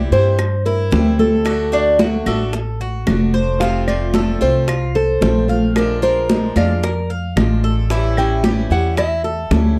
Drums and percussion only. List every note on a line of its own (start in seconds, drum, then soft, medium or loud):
0.12 high bongo soft
0.39 high bongo medium
0.39 high conga soft
0.39 claves medium
0.66 high bongo soft
0.66 high conga soft
0.92 high bongo medium
0.92 low bongo medium
0.92 high conga medium
1.19 high bongo soft
1.19 high conga medium
1.46 high bongo medium
1.46 high conga soft
1.46 claves medium
1.99 high bongo medium
1.99 high conga loud
2.26 high bongo soft
2.26 high conga medium
2.26 claves medium
2.53 high bongo medium
2.53 high conga soft
2.80 high conga soft
3.07 high bongo medium
3.07 low bongo medium
3.07 high conga medium
3.07 claves medium
3.34 high bongo soft
3.34 high conga soft
3.61 high bongo medium
3.87 high conga soft
3.87 claves medium
4.14 high bongo medium
4.14 high conga loud
4.41 high bongo soft
4.68 high bongo medium
4.68 high conga soft
4.68 claves medium
4.95 high bongo soft
4.95 high conga soft
5.21 high bongo medium
5.21 low bongo medium
5.21 high conga medium
5.48 high bongo soft
5.48 high conga medium
5.76 high bongo medium
5.76 high conga soft
5.76 claves medium
6.03 high conga soft
6.30 high bongo medium
6.30 high conga medium
6.56 high bongo soft
6.56 high conga medium
6.56 claves medium
6.83 high bongo medium
6.83 high conga soft
7.10 high conga soft
7.37 high bongo medium
7.37 low bongo medium
7.37 high conga medium
7.37 claves medium
7.63 high bongo soft
7.63 high conga soft
7.90 high bongo medium
7.90 high conga soft
8.17 high conga soft
8.17 claves medium
8.44 high bongo medium
8.44 high conga medium
8.71 high bongo soft
8.97 high bongo medium
8.97 high conga soft
8.97 claves medium
9.24 high bongo soft
9.24 high conga soft
9.51 high bongo medium
9.51 low bongo medium
9.51 high conga medium